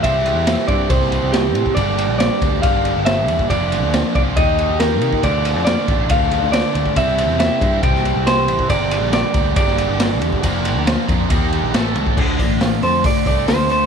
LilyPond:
<<
  \new Staff \with { instrumentName = "Clean electric guitar" } { \time 4/4 \key d \minor \tempo 4 = 138 e''4. d''8 c''4 g'4 | d''4 d''4 f''4 e''4 | d''4. d''8 ees''4 bes'4 | d''4 d''4 f''4 d''4 |
e''4 e''4 g''4 c''4 | d''4 d''4 d''2~ | d''2. r4 | r4. c''8 d''8 d''8 c''8 c''8 | }
  \new Staff \with { instrumentName = "Overdriven electric guitar" } { \time 4/4 \key d \minor <c g c' e'>4. <c g c' e'>2~ <c g c' e'>8 | <g, d g bes d'>4. <g, d g bes d'>2~ <g, d g bes d'>8 | <f bes d' f'>4. <f bes d' f'>8 <ees bes ees' g'>4. <ees bes ees' g'>8 | <d a d' f'>4. <d a d' f'>2~ <d a d' f'>8 |
<c g c' e'>4. <c g c' e'>2~ <c g c' e'>8 | <g, d g bes d' bes'>4. <g, d g bes d' bes'>2~ <g, d g bes d' bes'>8 | <f bes d' f' bes'>4. <f bes d' f' bes'>8 <ees bes ees' g' bes'>4 <a, e a cis' e' a'>4 | d8 d'8 f'8 a'8 d'8 a8 f'8 a8 | }
  \new Staff \with { instrumentName = "Distorted electric guitar" } { \time 4/4 \key d \minor <c e g c' g'>2 <c e g c' g'>2 | <g, d g bes d' g'>2 <g, d g bes d' g'>2 | <f bes d' f'>2 <ees bes ees' g'>2 | <d a d' f'>2 <d a d' f'>2 |
<c e g c' e'>2 <c e g c' e'>2 | <g, d g bes d' g'>2 <g, d g bes d' g'>2 | <f bes d' f'>2 <ees bes ees' g'>4 <a, e a cis' a'>4 | <d a d'>8 <d a>8 <d a>8 <d a>8 <d a>8 <d a d'>8 <d a>8 <d a>8 | }
  \new Staff \with { instrumentName = "Picked electric bass" } { \clef bass \time 4/4 \key d \minor c,8. e,8 r16 g,8 c,8. c,8. a,16 r16 | g,,8. bes,,8 r16 d,8 g,,8. g,,8. e,16 r16 | f,,8. d,8 r16 c,8 ees,8. ees,8. c16 r16 | d,8. f,8 r16 a,,8 d,8. d,8 r16 d,16 r16 |
c,8. e,8 r16 g,8 c,8. c,8. a,,16 r16 | g,,8. bes,,8 r16 d,8 g,,8. g,,8. e,16 r16 | f,,8. d,8 r16 f,8 ees,8. bes,,16 a,,8 cis,16 r16 | d,8 a,,8 a,,8 f,8 r8 c,8 d,4 | }
  \new DrumStaff \with { instrumentName = "Drums" } \drummode { \time 4/4 <bd cymr>8 cymr8 <cymr sn>8 <bd cymr>8 <bd cymr>16 sn16 cymr8 <cymr sn>8 cymr16 bd16 | <bd cymr>8 cymr8 <cymr sn>8 <bd cymr>8 <bd cymr>8 cymr8 <cymr sn>8 cymr16 bd16 | <bd cymr>8 cymr8 <cymr sn>8 <bd cymr>8 <bd cymr>8 cymr8 <cymr sn>8 cymr16 bd16 | <bd cymr>8 cymr8 <cymr sn>8 <bd cymr>8 <bd cymr>8 cymr8 <cymr sn>8 cymr16 bd16 |
<bd cymr>8 cymr8 <cymr sn>8 <bd cymr>8 <bd cymr>16 sn16 cymr8 <cymr sn>8 cymr16 bd16 | <bd cymr>8 cymr8 <cymr sn>8 <bd cymr>8 <bd cymr>16 sn16 cymr8 <cymr sn>8 cymr16 bd16 | <bd cymr>8 cymr8 <cymr sn>8 <bd cymr>8 <bd cymr>8 cymr8 <cymr sn>8 cymr16 bd16 | <cymc bd>8 <hho bd>8 <hho sn>8 hho8 <hho bd>8 <hho bd>8 <hho sn>8 hho8 | }
>>